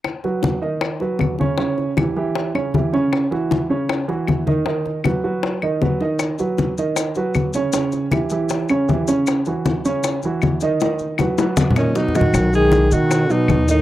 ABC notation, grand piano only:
X:1
M:4/4
L:1/8
Q:1/4=156
K:B
V:1 name="Grand piano"
z [F,FB]2 [D,Dd]2 [F,FB]2 [C,Cc] | [C,Cc]2 [E,E=G] [E,EG]2 [C,Cc] [E,EG] [C,Cc]- | [C,Cc] [E,EF]2 [C,Cc]2 [E,EF]2 [D,Dd] | [D,Dd]2 [F,FB] [F,FB]2 [D,Dd] [F,FB] [D,Dd]- |
[D,Dd] [F,FB]2 [D,Dd]2 [F,FB]2 [C,Cc] | [C,Cc]2 [E,E=G] [E,EG]2 [C,Cc] [E,EG] [C,Cc]- | [C,Cc] [E,EF]2 [C,Cc]2 [E,EF]2 [D,Dd] | [D,Dd]2 [F,FB] [F,FB]2 [D,Dd] [F,FB] [D,Dd] |
z [G,G]2 [D,D]2 [F,F]2 [D,D] |]